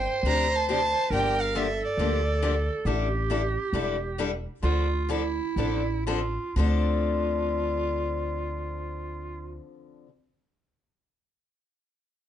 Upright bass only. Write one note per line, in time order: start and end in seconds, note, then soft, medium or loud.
0.23 0.93 D2 medium
1.10 1.80 G1 medium
1.97 2.67 D2 medium
2.85 3.55 A1 medium
3.73 4.45 E1 medium
4.63 5.38 D2 medium
5.56 6.36 A1 medium
6.56 9.57 D2 medium